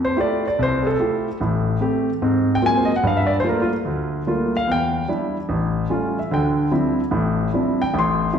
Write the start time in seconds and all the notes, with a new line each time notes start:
Already playing: F2
0.05 C5
0.17 A3 E4 F4 G4 D5
0.48 D5
0.59 C2 C5
0.83 G#4 A4
1.00 A3 E4 F4 G4
1.41 A1 A2
1.81 A3 C4 G4
2.22 G#2 C4
2.55 G5
2.62 F#3 G#3 A#3 C4 F4
2.66 G#5
2.77 C5
2.85 D#5
2.96 F#5
3.03 G2 G3 F5
3.17 E5
3.27 D5
3.40 G3 A3 C5
3.44 A#3 F4
3.49 A#4
3.62 F4
3.85 D2
4.27 G3 A3 A#3 F4
4.57 F5
4.67 E2
4.72 G5
5.08 G3 D4 E4
5.49 A1
5.90 G3 A3 C#4 F4
6.19 E5
6.31 D2 D3 G5
6.71 F3 G3 C4 D4 E4
7.11 A1 A2
7.53 F3 G3 C4 D4 E4
7.82 G5
7.94 A1 A2
7.99 C6
8.33 F3 G3 C4 D4 E4